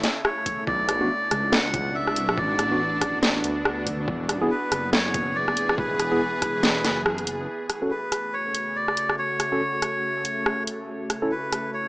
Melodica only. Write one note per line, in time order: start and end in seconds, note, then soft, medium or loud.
0.25 0.64 C#5 medium
0.67 1.55 D5 loud
1.52 1.96 F#5 loud
1.95 2.39 E5 loud
2.37 3.19 D5 loud
4.51 4.90 B4 loud
4.93 5.37 C#5 loud
5.35 5.75 D5 loud
5.78 7.02 B4 loud
7.91 8.35 B4 medium
8.33 8.77 C#5 loud
8.76 9.15 D5 loud
9.19 10.63 C#5 loud
11.31 11.71 B4 medium
11.74 11.88 C#5 loud